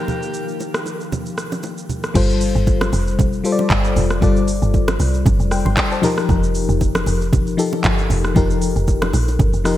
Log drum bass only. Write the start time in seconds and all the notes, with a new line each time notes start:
2.15 G1
2.55 G1
2.93 F1
3.70 G1
3.96 F1
4.22 G1
4.62 G1
5.00 C2
5.26 G1
5.40 F1
5.66 G1
6.29 F1
6.69 F1
7.07 F1
7.84 G1
8.10 F1
8.36 F1
8.76 F1
9.14 A#1
9.39 G1
9.54 F1